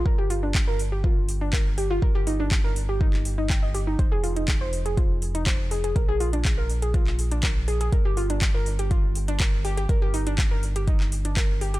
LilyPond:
<<
  \new Staff \with { instrumentName = "Synth pluck" } { \time 4/4 \key g \phrygian \tempo 4 = 122 bes'16 g'16 f'16 d'16 r16 bes'16 r16 g'16 f'16 r8 d'16 bes'16 r16 g'16 f'16 | bes'16 g'16 ees'16 d'16 r16 bes'16 r16 g'16 ees'16 r8 ees'16 g''16 ees''16 g'16 ees'16 | c''16 aes'16 f'16 ees'16 r16 c''16 r16 aes'16 f'16 r8 ees'16 c''16 r16 aes'16 aes'16 | bes'16 aes'16 f'16 d'16 r16 bes'16 r16 aes'16 f'16 r8 d'16 bes'16 r16 aes'16 aes'16 |
bes'16 g'16 f'16 d'16 r16 bes'16 r16 g'16 f'16 r8 d'16 bes'16 r16 g'16 g'16 | bes'16 g'16 ees'16 d'16 r16 bes'16 r16 g'16 ees'16 r8 d'16 bes'16 r16 g'16 g'16 | }
  \new Staff \with { instrumentName = "Analog synth bass" } { \clef bass \time 4/4 \key g \phrygian g,,1 | g,,1 | f,,1 | bes,,1 |
g,,1 | g,,1 | }
  \new DrumStaff \with { instrumentName = "Drums" } \drummode { \time 4/4 bd8 hho8 <hc bd>8 hho8 bd8 hho8 <hc bd>8 hho8 | bd8 hho8 <hc bd>8 hho8 bd16 hc16 hho8 <hc bd>8 hho8 | <hh bd>8 hho16 hh16 <hc hh bd>8 hho16 hh16 <hh bd>8 hho16 hh16 <hc hh bd>8 hho16 hh16 | <hh bd>8 hho16 hh16 <hc hh bd>8 hho16 hh16 <hh bd>16 hc16 hho16 hh16 <hc hh bd>8 hho16 hh16 |
<hh bd>8 hho16 hh16 <hc hh bd>8 hho16 hh16 <hh bd>8 hho16 hh16 <hc hh bd>8 hho16 hh16 | <hh bd>8 hho16 hh16 <hc hh bd>8 hho16 hh16 <hh bd>16 hc16 hho16 hh16 <hc hh bd>8 hho16 hh16 | }
>>